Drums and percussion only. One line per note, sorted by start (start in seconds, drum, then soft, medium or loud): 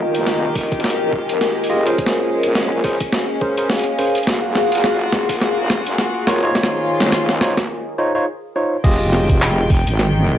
0.15 closed hi-hat medium
0.27 snare medium
0.27 closed hi-hat medium
0.55 kick loud
0.55 open hi-hat medium
0.72 kick loud
0.72 closed hi-hat soft
0.80 closed hi-hat soft
0.84 snare medium
0.84 closed hi-hat medium
0.90 closed hi-hat medium
1.13 kick medium
1.29 closed hi-hat medium
1.41 snare soft
1.41 closed hi-hat soft
1.64 open hi-hat medium
1.87 closed hi-hat medium
1.98 kick loud
1.98 closed hi-hat medium
2.06 snare medium
2.43 closed hi-hat medium
2.55 snare medium
2.55 closed hi-hat medium
2.84 kick loud
2.84 open hi-hat medium
3.00 kick loud
3.00 closed hi-hat medium
3.13 snare medium
3.13 closed hi-hat medium
3.41 kick loud
3.57 closed hi-hat medium
3.70 snare medium
3.70 closed hi-hat soft
3.72 closed hi-hat soft
3.75 closed hi-hat soft
3.78 closed hi-hat soft
3.84 closed hi-hat soft
3.98 open hi-hat medium
4.15 closed hi-hat medium
4.18 closed hi-hat medium
4.23 kick loud
4.23 closed hi-hat soft
4.27 snare medium
4.27 closed hi-hat medium
4.33 closed hi-hat soft
4.36 closed hi-hat soft
4.55 snare medium
4.72 closed hi-hat medium
4.75 closed hi-hat medium
4.78 closed hi-hat soft
4.84 snare medium
4.84 closed hi-hat medium
5.12 kick loud
5.12 snare medium
5.29 kick loud
5.29 closed hi-hat medium
5.29 open hi-hat medium
5.41 snare medium
5.41 closed hi-hat medium
5.70 kick medium
5.70 snare medium
5.86 closed hi-hat medium
5.98 snare medium
5.98 closed hi-hat medium
6.27 snare medium
6.27 open hi-hat medium
6.55 kick loud
6.55 snare medium
6.55 closed hi-hat medium
6.63 snare medium
7.00 snare medium
7.00 closed hi-hat medium
7.02 snare medium
7.06 snare soft
7.09 snare soft
7.11 snare soft
7.12 snare loud
7.12 closed hi-hat medium
7.29 snare medium
7.41 kick loud
7.41 snare loud
7.41 open hi-hat medium
7.57 kick loud
7.57 snare medium
7.57 closed hi-hat medium
8.84 kick loud
8.84 closed hi-hat medium
8.84 crash loud
9.13 snare medium
9.29 kick loud
9.29 closed hi-hat medium
9.42 clap loud
9.42 closed hi-hat medium
9.70 kick loud
9.70 open hi-hat medium
9.87 closed hi-hat medium
9.99 snare medium
9.99 closed hi-hat medium